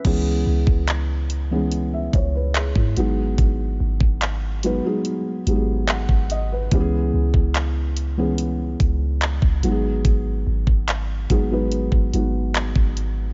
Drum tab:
CC |x---------------|----------------|----------------|----------------|
HH |x---x-x-x-x-x-x-|x---x-x-x-x-x-x-|x---x-x-x-x-x-x-|x---x-x-x-x-x-x-|
CP |----x-------x---|----x-------x---|----x-------x---|----x-------x---|
BD |o--o------o--o--|o--o---------o--|o--o------o--o--|o--o--o--o---o--|